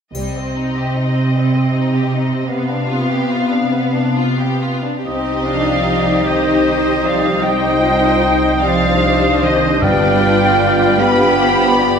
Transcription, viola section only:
0.14 2.47 C4 soft
2.50 4.80 B3 soft
5.05 5.43 C4 soft
5.05 5.83 D#4 soft
5.43 5.85 D4 soft
5.84 7.40 D#4 soft
6.25 7.41 G4 soft
7.42 8.21 D#4 soft
7.42 7.81 G4 soft
7.83 8.22 F4 soft
8.23 8.63 D#4 soft
8.63 11.99 D4 soft
8.63 9.80 G4 soft
9.81 10.21 G4 soft
10.22 10.59 F4 soft
10.60 10.98 F4 soft
10.99 11.99 G4 soft

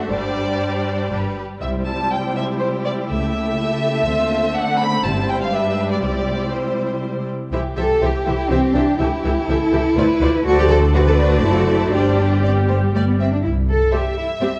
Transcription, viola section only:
0.10 1.09 G3 soft
0.10 1.09 D4 soft
1.11 1.40 G3 soft
1.11 1.19 D4 soft
1.60 3.05 G3 soft
1.60 4.03 E4 soft
3.10 5.01 A3 soft
4.08 5.50 C4 medium
5.05 7.29 G3 medium
5.54 6.00 D4 soft
6.03 7.29 E4 soft
7.53 7.61 E3 soft
7.53 7.61 G4 soft
7.78 7.86 E3 soft
7.78 7.86 G4 soft
8.02 8.10 E3 soft
8.02 8.10 G4 soft
8.26 8.34 E3 soft
8.26 8.34 G4 soft
8.51 8.59 E3 soft
8.51 8.59 G4 soft
8.75 8.83 E3 soft
8.75 8.84 G4 soft
9.00 9.08 E3 soft
9.00 9.08 G4 soft
9.25 9.33 E3 soft
9.25 9.33 G4 soft
9.49 9.57 E3 soft
9.49 9.57 G4 medium
9.72 9.80 E3 soft
9.72 9.80 G4 medium
9.97 10.05 A3 medium
9.97 10.05 F4 medium
10.21 10.29 A3 medium
10.21 10.29 F4 medium
10.45 10.90 A3 medium
10.45 10.91 F#4 medium
10.93 11.91 A3 medium
10.93 11.91 F#4 medium
11.93 12.92 G3 medium
11.93 12.92 G4 medium
12.93 13.23 G3 soft
12.93 13.01 G4 soft
13.92 14.01 G3 soft
13.92 14.00 G4 soft
14.41 14.49 G3 soft
14.41 14.49 G4 soft

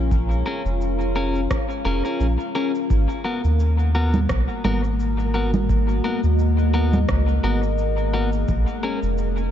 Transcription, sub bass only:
0.00 0.43 A#1 loud
0.65 1.48 F1 medium
1.85 2.03 F1 medium
2.20 2.38 A#1 medium
2.90 3.08 G#1 loud
3.44 4.27 D#2 medium
4.30 4.47 B1 medium
4.65 6.01 G#1 loud
6.24 7.06 D#2 medium
7.09 7.40 C#2 medium
7.44 8.46 G#1 medium
8.48 8.66 A#1 loud
9.03 9.51 F1 medium

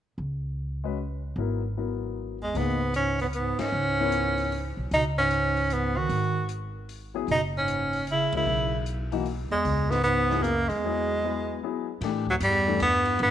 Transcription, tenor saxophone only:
2.43 2.59 G#3 medium
2.57 2.95 B3 medium
2.96 3.19 C#4 medium
3.21 3.27 B3 medium
3.35 3.61 B3 medium
3.60 4.78 C#4 medium
4.93 5.04 D#4 medium
5.18 5.75 C#4 medium
5.73 5.99 B3 medium
5.97 6.50 F#4 medium
7.31 7.42 D#4 medium
7.58 8.06 C#4 medium
8.11 8.33 E4 medium
8.37 8.85 E4 medium
9.52 9.92 G#3 medium
9.90 10.03 B3 medium
10.04 10.43 B3 loud
10.42 10.70 A#3 medium
10.69 11.62 G#3 medium
12.30 12.36 F#3 medium
12.44 12.79 G3 medium
12.82 13.18 B3 loud
13.23 13.31 B3 loud

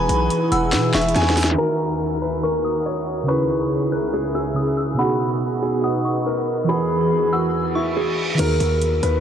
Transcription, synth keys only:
0.00 1.52 E3 medium
0.00 1.54 E4 medium
0.00 1.55 G#4 medium
0.00 1.57 B4 medium
1.54 3.23 D#3 medium
1.54 3.24 D#4 medium
1.60 3.26 F#4 medium
1.60 3.27 A#4 medium
3.23 4.51 C#3 medium
3.23 4.53 C#4 medium
3.30 4.54 E4 medium
3.30 4.56 G#4 medium
4.54 4.98 C#3 medium
4.54 4.98 C#4 soft
4.54 4.99 E4 soft
4.59 5.00 G#4 soft
4.94 6.63 B2 medium
4.94 6.65 B3 medium
5.00 6.66 D#4 medium
5.00 6.68 F#4 medium
6.64 8.33 E3 medium
6.64 8.35 E4 medium
6.71 8.36 G#4 medium
6.71 8.38 B4 medium
8.35 9.20 D#3 medium
8.35 9.20 D#4 medium
8.41 9.20 F#4 medium
8.41 9.20 A#4 medium

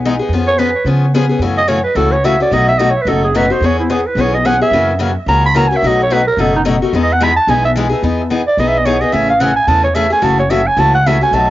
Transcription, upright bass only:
0.00 0.18 B1 medium
0.29 0.74 F2 medium
0.85 1.29 C#3 medium
1.39 1.84 F#2 medium
1.95 2.40 C#2 medium
2.51 2.95 B1 medium
3.05 3.50 F#1 medium
3.60 4.05 E2 medium
4.15 4.60 B1 medium
4.71 5.15 F#2 medium
5.26 5.71 C#2 medium
5.82 6.26 B1 loud
6.37 6.81 F#1 medium
6.93 7.37 E2 medium
7.47 7.91 B1 medium
8.03 8.47 E2 medium
8.57 9.01 B1 medium
9.13 9.57 A1 medium
9.67 10.11 E2 medium
10.22 10.66 F#1 medium
10.77 11.21 C#2 medium
11.31 11.50 B1 medium

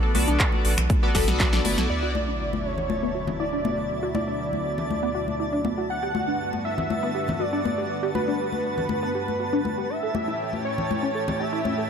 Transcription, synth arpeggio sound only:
0.03 0.11 A4 loud
0.15 0.27 F#4 medium
0.28 0.39 D4 medium
1.03 1.11 B3 loud
1.15 1.27 A4 medium
1.40 1.45 F#4 medium
1.53 1.61 D4 loud
1.65 1.73 B3 medium
1.78 1.89 A4 medium
2.03 2.11 F#4 loud
2.15 2.27 E4 medium
2.28 2.39 D4 medium
3.03 3.11 B3 loud
3.15 3.27 F#4 medium
3.40 3.45 E4 medium
3.53 3.61 D4 loud
3.65 3.73 B3 medium
3.78 3.89 F#4 medium
4.03 4.11 F#4 medium
4.15 4.27 E4 medium
4.28 4.39 D4 medium
5.03 5.11 B3 loud
5.15 5.27 F#4 medium
5.40 5.45 E4 medium
5.53 5.61 D4 loud
5.65 5.73 B3 medium
5.78 5.89 F#4 medium
6.03 6.11 G4 loud
6.15 6.27 F#4 medium
6.28 6.39 D4 medium
7.03 7.11 B3 loud
7.15 7.27 G4 medium
7.40 7.45 F#4 medium
7.53 7.61 D4 loud
7.65 7.73 B3 medium
7.78 7.89 G4 medium
8.03 8.11 G4 loud
8.15 8.27 F#4 medium
8.28 8.39 D4 medium
9.03 9.11 B3 loud
9.15 9.27 G4 medium
9.40 9.45 F#4 medium
9.53 9.61 D4 loud
9.65 9.73 B3 medium
9.78 9.89 G4 medium
10.03 10.11 A4 loud
10.15 10.27 G4 medium
10.28 10.39 E4 medium
11.03 11.11 C#4 loud
11.15 11.27 A4 medium
11.40 11.45 G4 medium
11.53 11.61 E4 loud
11.65 11.73 C#4 medium
11.78 11.89 A4 medium

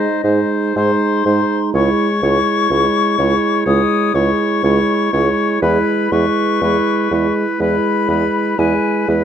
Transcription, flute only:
0.00 0.48 D#5 medium
0.76 1.70 C6 medium
1.75 3.63 C#6 medium
3.67 4.16 D#6 medium
4.15 5.62 C#6 medium
5.63 6.14 B5 medium
6.12 7.34 C#6 medium
7.60 8.60 B5 medium
8.59 9.08 G#5 medium

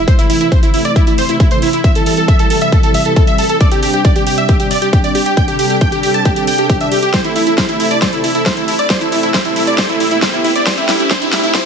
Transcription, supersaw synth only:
0.08 0.15 C5 medium
0.19 0.26 E4 medium
0.30 0.37 E4 medium
0.41 0.48 E4 medium
0.52 0.59 C5 medium
0.63 0.70 E4 medium
0.74 0.81 E4 medium
0.85 0.92 D5 medium
0.96 1.03 E4 medium
1.07 1.14 E4 medium
1.18 1.25 C5 medium
1.29 1.36 E4 medium
1.40 1.47 E4 medium
1.51 1.58 C5 medium
1.63 1.69 E4 medium
1.74 1.80 E4 medium
1.85 1.91 E5 loud
1.96 2.02 A4 medium
2.07 2.13 A4 medium
2.18 2.24 A4 medium
2.29 2.35 E5 medium
2.40 2.46 A4 medium
2.51 2.57 A4 medium
2.62 2.68 E5 loud
2.73 2.79 A4 medium
2.84 2.90 A4 medium
2.94 3.01 E5 medium
3.06 3.12 A4 medium
3.17 3.23 A4 medium
3.28 3.34 E5 medium
3.39 3.45 A4 medium
3.50 3.56 A4 medium
3.61 3.67 D5 medium
3.72 3.78 G4 medium
3.83 3.90 G4 medium
3.94 4.01 G4 medium
4.05 4.12 D5 medium
4.16 4.23 G4 medium
4.27 4.34 G4 medium
4.38 4.45 E5 medium
4.49 4.56 G4 medium
4.60 4.67 G4 medium
4.71 4.78 D5 medium
4.82 4.89 G4 medium
4.93 5.00 G4 medium
5.04 5.11 D5 medium
5.15 5.22 G4 medium
5.26 5.33 G4 medium
5.37 5.44 G5 loud
5.48 5.55 G4 medium
5.59 5.66 G4 medium
5.70 5.77 G4 medium
5.81 5.88 G5 medium
5.92 5.99 G4 medium
6.03 6.10 G4 medium
6.14 6.21 A5 medium
6.25 6.32 G4 medium
6.37 6.43 G4 medium
6.48 6.54 G5 medium
6.59 6.65 G4 medium
6.70 6.76 G4 medium
6.81 6.88 E5 medium
6.92 6.98 G4 medium
7.03 7.09 G4 medium
7.14 7.21 C5 medium
7.25 7.32 E4 medium
7.36 7.43 E4 medium
7.47 7.54 E4 medium
7.58 7.65 C5 medium
7.69 7.76 E4 medium
7.80 7.87 E4 medium
7.91 7.98 D5 medium
8.02 8.09 C5 medium
8.13 8.20 E4 medium
8.24 8.31 E4 medium
8.35 8.42 E4 medium
8.46 8.53 C5 medium
8.57 8.64 E4 medium
8.68 8.75 E4 medium
8.79 8.86 D5 medium
8.90 8.97 C5 medium
9.01 9.08 E4 medium
9.12 9.19 E4 medium
9.23 9.30 E4 medium
9.34 9.41 C5 medium
9.45 9.52 E4 medium
9.56 9.63 E4 medium
9.67 9.74 D5 medium
9.78 9.85 C5 medium
9.89 9.96 E4 medium
10.00 10.07 E4 medium
10.11 10.18 E4 medium
10.22 10.29 C5 medium
10.33 10.40 E4 medium
10.44 10.51 E4 medium
10.55 10.62 D5 medium
10.66 10.73 C5 medium
10.77 10.84 E4 medium
10.89 10.96 E4 medium
11.00 11.07 E4 medium
11.11 11.18 C5 loud
11.22 11.29 E4 medium
11.33 11.40 E4 medium
11.44 11.51 E4 medium
11.55 11.62 C5 loud

